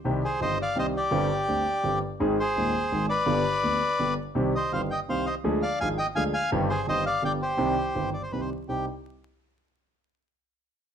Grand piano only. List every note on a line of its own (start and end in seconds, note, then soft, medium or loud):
0.04 0.20 C2 medium
0.04 0.20 C3 medium
0.04 0.20 D#3 medium
0.04 0.20 G3 medium
0.04 0.20 C4 medium
0.04 0.20 G4 medium
0.40 0.56 G1 medium
0.40 0.56 G2 medium
0.40 0.56 D#3 medium
0.40 0.56 G3 soft
0.40 0.56 C4 soft
0.40 0.56 G4 medium
0.75 0.91 C2 medium
0.75 0.91 C3 medium
0.75 0.91 D#3 medium
0.75 0.91 G3 soft
0.75 0.92 C4 soft
0.75 0.92 G4 medium
1.11 1.27 G1 medium
1.11 1.27 G2 medium
1.11 1.27 D3 medium
1.11 1.27 G3 medium
1.11 1.27 C4 medium
1.11 1.27 G4 medium
1.48 1.64 D2 medium
1.48 1.64 D3 medium
1.48 1.64 G3 soft
1.48 1.64 C4 medium
1.48 1.64 G4 medium
1.83 1.99 G1 medium
1.83 1.99 G2 medium
1.83 1.99 D3 medium
1.83 1.99 G3 soft
1.83 1.99 C4 soft
1.83 1.99 G4 medium
2.20 2.35 G#1 medium
2.20 2.35 G#2 medium
2.20 2.35 D#3 medium
2.20 2.35 G#3 medium
2.20 2.35 C4 medium
2.20 2.35 G#4 medium
2.56 2.71 D#1 medium
2.56 2.71 D#2 medium
2.56 2.71 D#3 medium
2.56 2.71 G#3 soft
2.56 2.71 C4 soft
2.56 2.71 G#4 medium
2.92 3.06 G#1 medium
2.92 3.06 G#2 medium
2.92 3.06 D#3 medium
2.92 3.06 G#3 soft
2.92 3.06 C4 medium
2.92 3.06 G#4 medium
3.26 3.42 G1 medium
3.26 3.42 G2 medium
3.26 3.41 D3 medium
3.26 3.42 G3 medium
3.26 3.42 B3 medium
3.26 3.42 G4 medium
3.63 3.78 D2 medium
3.63 3.78 D3 medium
3.63 3.78 G3 soft
3.63 3.78 B3 soft
3.63 3.78 G4 medium
3.99 4.15 G1 medium
3.99 4.15 G2 medium
3.99 4.14 D3 medium
3.99 4.14 G3 soft
3.99 4.15 B3 soft
3.99 4.15 G4 medium
4.35 4.51 C2 medium
4.35 4.51 C3 medium
4.35 4.51 D#3 medium
4.35 4.51 G3 medium
4.35 4.51 C4 medium
4.35 4.51 G4 medium
4.72 4.88 G1 medium
4.72 4.88 G2 medium
4.72 4.88 D#3 medium
4.72 4.88 G3 soft
4.72 4.88 C4 soft
4.72 4.88 G4 medium
5.08 5.24 C2 medium
5.08 5.24 C3 medium
5.08 5.24 D#3 medium
5.08 5.24 G3 soft
5.08 5.24 C4 soft
5.08 5.24 G4 medium
5.44 5.60 D2 medium
5.44 5.60 D3 medium
5.44 5.59 F3 medium
5.44 5.59 G#3 medium
5.44 5.60 D4 medium
5.44 5.60 G#4 medium
5.81 5.96 G#1 medium
5.81 5.96 G#2 medium
5.81 5.96 F3 medium
5.81 5.96 G#3 medium
5.81 5.96 D4 soft
5.81 5.96 G#4 medium
6.15 6.31 D2 medium
6.15 6.31 D3 medium
6.15 6.31 F3 medium
6.15 6.31 G#3 medium
6.15 6.31 D4 medium
6.15 6.31 G#4 medium
6.52 6.67 G1 loud
6.52 6.67 G2 loud
6.52 6.67 D#3 medium
6.52 6.67 G3 medium
6.52 6.67 C4 medium
6.52 6.67 G4 medium
6.87 7.02 G1 medium
6.87 7.02 G2 medium
6.87 7.02 D#3 soft
6.87 7.02 G3 soft
6.87 7.02 C4 soft
6.87 7.02 G4 medium
7.22 7.38 G1 medium
7.22 7.38 G2 medium
7.22 7.38 D3 soft
7.22 7.38 G3 soft
7.22 7.38 B3 soft
7.22 7.38 G4 medium
7.57 7.73 C2 medium
7.57 7.73 C3 medium
7.57 7.73 D#3 medium
7.57 7.73 G3 medium
7.57 7.73 C4 medium
7.57 7.73 G4 medium
7.95 8.10 G1 medium
7.95 8.10 G2 medium
7.95 8.10 D#3 soft
7.95 8.10 G3 soft
7.95 8.10 C4 soft
7.95 8.10 G4 medium
8.32 8.47 C2 medium
8.32 8.47 C3 medium
8.32 8.47 D#3 soft
8.32 8.47 G3 soft
8.32 8.48 C4 soft
8.32 8.47 G4 medium
8.69 8.84 C2 medium
8.69 8.84 C4 soft
8.69 8.84 D#4 soft
8.69 8.84 G4 medium